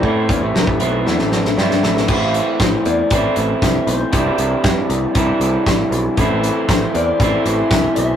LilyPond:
<<
  \new Staff \with { instrumentName = "Tonewheel organ" } { \time 4/4 \key a \minor \tempo 4 = 117 r1 | r1 | r1 | <a' c'' e'' c'''>1 | }
  \new Staff \with { instrumentName = "Clean electric guitar" } { \time 4/4 \key a \minor c''4 b'4 a'4. r8 | r4 c''8 d''4 r8 e''8 c''8~ | c''4. r2 r8 | r4 c''8 d''4 r8 e''8 e''8 | }
  \new Staff \with { instrumentName = "Clean electric guitar" } { \time 4/4 \key a \minor <a, e a c' e'>4. <a, e a c' e'>4. <a, e a c' e'>4 | <a, e a c' e'>2 <a, e a c' e'>2 | <c e g d' e'>2 <c e g d' e'>2 | <a, e a c' e'>2 <a, e a c' e'>2 | }
  \new Staff \with { instrumentName = "Overdriven electric guitar" } { \time 4/4 \key a \minor <a a'>8 <e e'>16 <a, a>16 <c c'>16 <a, a>16 <b, b>8 <e e'>16 <a, a>8. <g g'>8 <a, a>8 | <a, e a c' e'>2 <a, e a c' e'>2 | <c e g c' e'>2 <c e g c' e'>2 | <a, e a c' e'>2 <a, e a c' e'>2 | }
  \new Staff \with { instrumentName = "Picked electric bass" } { \clef bass \time 4/4 \key a \minor a,8 e,16 a,,16 c,16 a,,16 b,,8 e,16 a,,8. g,8 a,,8 | a,,4 a,,8 e,8 a,,8 a,,8 c,8 b,,8 | c,8 c,8 g,8 c,8 c,8 c,8 a,,8 b,,8 | a,,4 a,,8 e,8 a,,8 a,,8 c,8 b,,8 | }
  \new DrumStaff \with { instrumentName = "Drums" } \drummode { \time 4/4 bd8 <hh bd>8 sn16 bd16 hh8 sn16 sn16 sn16 sn16 sn16 sn16 sn16 sn16 | <cymc bd>8 hh8 <hh bd sn>8 hh8 <hh bd>8 hh8 <hh bd sn>8 hh8 | <hh bd>8 hh8 <hh bd sn>8 hh8 <hh bd>8 hh8 <hh bd sn>8 hh8 | <hh bd>8 hh8 <hh bd sn>8 hh8 <hh bd>8 hh8 <hh bd sn>8 hh8 | }
>>